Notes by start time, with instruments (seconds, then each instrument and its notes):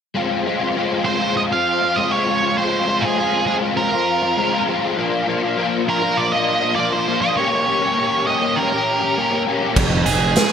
0.14 overdriven electric guitar G#3 C4 F4
0.46 overdriven electric guitar G#3 C4 F4
0.60 overdriven electric guitar C4 F4
0.76 overdriven electric guitar G#3 C4 F4
1.06 overdriven electric guitar G#3 C4 F4, lead electric guitar C5
1.21 overdriven electric guitar C4 F4
1.37 lead electric guitar D#5
1.52 overdriven electric guitar C4 F4, lead electric guitar F5
1.82 overdriven electric guitar C4 F4
1.96 overdriven electric guitar G#3 C4 F4, lead electric guitar D#5
2.11 overdriven electric guitar C4 F4, lead electric guitar C#5
2.27 overdriven electric guitar G#3 C4 F4
2.42 overdriven electric guitar C4 F4
2.57 overdriven electric guitar G#3 C4 F4, lead electric guitar C5
2.86 overdriven electric guitar G#3 C4 F4
3.01 overdriven electric guitar C4 F4, lead electric guitar G#4
3.16 overdriven electric guitar G#3 C4 F4
3.47 overdriven electric guitar G#3 C4 F4, lead electric guitar G#4
3.62 overdriven electric guitar C4 F4
3.77 lead electric guitar A#4
3.92 overdriven electric guitar C4 F4
4.22 overdriven electric guitar C4 F4
4.37 overdriven electric guitar G#3 C4 F4
4.52 overdriven electric guitar C4 F4
4.67 overdriven electric guitar G#3 C4 F4
4.81 overdriven electric guitar C4 F4
4.97 overdriven electric guitar F3 A#3 D4 F4
5.27 overdriven electric guitar F3 A#3 D4 F4
5.42 overdriven electric guitar A#3 D4 F4
5.57 overdriven electric guitar F3 A#3 D4 F4
5.86 overdriven electric guitar F3 A#3 D4 F4, lead electric guitar A#4
6.01 overdriven electric guitar A#3 D4 F4
6.17 lead electric guitar D5
6.32 overdriven electric guitar A#3 D4 F4, lead electric guitar D#5
6.61 overdriven electric guitar A#3 D4 F4
6.76 overdriven electric guitar F3 A#3 D4 F4, lead electric guitar D5
6.92 overdriven electric guitar A#3 D4 F4, lead electric guitar C5
7.07 overdriven electric guitar F3 A#3 D4 F4
7.22 overdriven electric guitar A#3 D4 F4, lead electric guitar D#5
7.37 overdriven electric guitar A#3 C#4 G4, lead electric guitar C#5
7.67 overdriven electric guitar A#3 C#4 G4
7.81 overdriven electric guitar C#4 G4
7.97 overdriven electric guitar A#3 C#4 G4
8.26 overdriven electric guitar A#3 C#4 G4, lead electric guitar D#5
8.41 overdriven electric guitar C#4 G4
8.56 lead electric guitar A#4
8.72 overdriven electric guitar C#4 G4
9.01 overdriven electric guitar C#4 G4
9.17 overdriven electric guitar A#3 C#4 G4
9.32 overdriven electric guitar C#4 G4
9.47 overdriven electric guitar A#3 C#4 G4
9.61 overdriven electric guitar C#4 G4
9.76 fingered electric bass F1, overdriven electric guitar F2, kick, crash
10.06 fingered electric bass F1, overdriven electric guitar F2, lead electric guitar G#4, closed hi-hat
10.36 snare, closed hi-hat